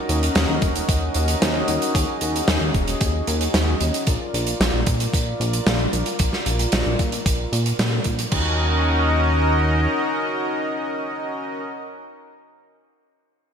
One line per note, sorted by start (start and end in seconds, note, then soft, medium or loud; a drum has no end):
0.00 4.03 C#4 medium
0.00 4.03 D#4 medium
0.00 4.03 F#4 medium
0.00 1.91 A#4 medium
0.00 4.03 D#5 medium
0.09 0.30 D#2 medium
0.09 closed hi-hat medium
0.23 closed hi-hat medium
0.35 0.46 D#2 medium
0.35 snare loud
0.35 closed hi-hat medium
0.49 0.59 D#2 medium
0.62 0.83 D#1 loud
0.62 kick loud
0.62 closed hi-hat medium
0.76 closed hi-hat medium
0.89 1.09 D#2 medium
0.89 kick loud
0.89 closed hi-hat medium
1.14 1.36 D#2 medium
1.14 closed hi-hat medium
1.28 closed hi-hat medium
1.42 1.62 D#2 medium
1.42 snare loud
1.42 closed hi-hat medium
1.68 1.79 D#2 medium
1.68 closed hi-hat medium
1.82 closed hi-hat medium
1.95 2.05 D#2 loud
1.95 kick loud
1.95 closed hi-hat loud
2.21 2.42 D#2 medium
2.21 closed hi-hat medium
2.36 closed hi-hat medium
2.48 2.58 D#2 medium
2.48 snare loud
2.48 closed hi-hat medium
2.61 2.72 D#2 medium
2.74 2.95 D#1 loud
2.74 kick loud
2.74 closed hi-hat medium
2.88 closed hi-hat medium
3.01 3.22 D#2 medium
3.01 kick loud
3.01 closed hi-hat medium
3.27 3.48 D#2 medium
3.27 closed hi-hat medium
3.41 closed hi-hat medium
3.54 3.75 D#2 medium
3.54 snare loud
3.54 closed hi-hat loud
3.81 3.91 D#2 medium
3.81 closed hi-hat medium
3.94 closed hi-hat medium
4.07 4.18 A#1 medium
4.07 8.28 F4 medium
4.07 8.28 A#4 medium
4.07 8.28 D5 medium
4.07 kick loud
4.07 closed hi-hat medium
4.34 4.54 A#1 medium
4.34 closed hi-hat medium
4.47 closed hi-hat medium
4.60 4.71 A#1 medium
4.60 snare loud
4.60 closed hi-hat medium
4.74 4.84 A#1 medium
4.86 5.07 A#2 loud
4.86 kick medium
4.86 closed hi-hat medium
5.00 closed hi-hat medium
5.14 5.34 A#1 medium
5.14 kick loud
5.14 closed hi-hat medium
5.40 5.61 A#1 loud
5.40 closed hi-hat medium
5.53 closed hi-hat medium
5.67 5.87 A#1 medium
5.67 snare loud
5.67 closed hi-hat medium
5.93 6.03 A#1 medium
5.93 closed hi-hat medium
6.06 closed hi-hat medium
6.19 6.30 A#1 loud
6.19 kick loud
6.19 closed hi-hat medium
6.33 snare soft
6.46 6.67 A#1 medium
6.46 closed hi-hat medium
6.59 closed hi-hat medium
6.72 6.83 A#1 medium
6.72 snare loud
6.72 closed hi-hat medium
6.86 6.96 A#1 medium
6.99 7.20 A#2 loud
6.99 kick loud
6.99 closed hi-hat medium
7.12 closed hi-hat medium
7.26 7.46 A#1 medium
7.26 kick loud
7.26 closed hi-hat loud
7.52 7.73 A#2 medium
7.52 closed hi-hat medium
7.66 closed hi-hat medium
7.79 7.99 A#2 medium
7.79 snare loud
7.79 closed hi-hat medium
8.04 8.26 A#1 medium
8.04 kick medium
8.04 closed hi-hat medium
8.19 closed hi-hat medium
8.32 9.87 D#2 loud
8.32 11.62 C#4 medium
8.32 11.62 D#4 medium
8.32 11.62 F#4 medium
8.32 11.62 A#4 medium
8.32 11.62 D#5 medium
8.32 kick loud
8.32 crash medium